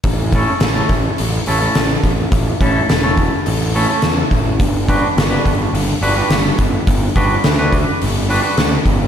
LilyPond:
<<
  \new Staff \with { instrumentName = "Clean electric guitar" } { \time 4/4 \key a \mixolydian \tempo 4 = 105 r8 <a cis' e' a'>16 r8 <a cis' e' a'>16 r4 <a cis' e' a'>16 <a cis' e' a'>16 r4 | r8 <a cis' e' a'>16 r8 <a cis' e' a'>16 r4 <a cis' e' a'>16 <a cis' e' a'>16 r4 | r8 <g d' fis' b'>16 r8 <g d' fis' b'>16 r4 <g d' fis' b'>16 <g d' fis' b'>16 r4 | r8 <g d' fis' b'>16 r8 <g d' fis' b'>16 r4 <g d' fis' b'>16 <g d' fis' b'>16 r4 | }
  \new Staff \with { instrumentName = "Picked electric bass" } { \clef bass \time 4/4 \key a \mixolydian a,,4 a,,8 a,,8 a,,8 a,,8 a,,8 a,,8 | a,,8 a,,8 e,,4 a,,4 e,8 a,,8 | g,,4 g,,8 g,,8 g,,8 g,,8 g,,8 g,,8 | g,,8 g,,8 d,4 g,,4 d,8 g,,8 | }
  \new DrumStaff \with { instrumentName = "Drums" } \drummode { \time 4/4 <hho bd>8 <hho bd>8 <hho sn>8 <hho bd>8 hho8 hho8 <hho sn>8 <hho bd>8 | <hho bd>8 <hho bd>8 <hho sn>8 <hho bd>8 hho8 hho8 <hho sn>8 <hho bd>8 | <hho bd>8 <hho bd>8 <hho sn>8 <hho bd>8 hho8 hho8 <hho sn>8 <hho bd>8 | <hho bd>8 <hho bd>8 <hho sn>8 <hho bd>8 hho8 hho8 <hho sn>8 <hho bd>8 | }
>>